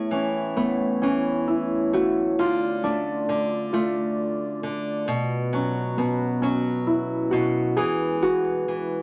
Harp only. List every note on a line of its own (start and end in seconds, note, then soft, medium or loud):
0.12 1.01 C#4 medium
0.57 3.67 B3 medium
1.02 2.89 C#4 medium
1.48 2.45 E4 medium
1.94 2.45 F#4 medium
2.39 3.72 F4 medium
2.83 5.59 D4 medium
3.73 6.25 F4 medium
5.53 6.41 C#4 medium
5.97 9.02 B3 medium
6.42 9.02 C#4 medium
6.87 9.02 E4 medium
7.31 8.22 F#4 medium
7.77 9.02 G#4 medium
8.22 9.02 F#4 medium